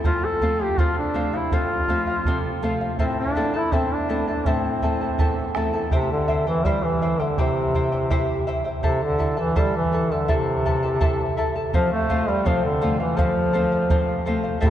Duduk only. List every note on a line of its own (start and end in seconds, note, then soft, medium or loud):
0.06 0.26 F4 medium
0.25 0.64 A4 medium
0.62 0.81 G4 medium
0.80 0.98 F4 medium
0.99 1.37 D4 medium
1.36 1.55 E4 medium
1.54 2.63 F4 medium
3.01 3.17 C4 medium
3.20 3.58 D4 medium
3.57 3.75 E4 medium
3.74 3.94 C4 medium
3.93 4.28 D4 medium
4.28 4.49 D4 medium
4.47 5.56 C4 medium
5.92 6.09 C3 medium
6.12 6.45 D3 medium
6.48 6.67 E3 medium
6.65 6.85 G3 medium
6.84 7.22 E3 medium
7.20 7.40 D3 medium
7.39 8.48 C3 medium
8.85 9.01 C3 medium
9.03 9.36 D3 medium
9.40 9.60 E3 medium
9.58 9.75 G3 medium
9.77 10.15 E3 medium
10.13 10.30 D3 medium
10.31 11.35 C3 medium
11.75 11.91 F3 medium
11.92 12.30 A3 medium
12.29 12.47 G3 medium
12.46 12.64 F3 medium
12.64 12.98 D3 medium
13.00 13.19 E3 medium
13.18 14.26 F3 medium
14.64 14.70 C3 medium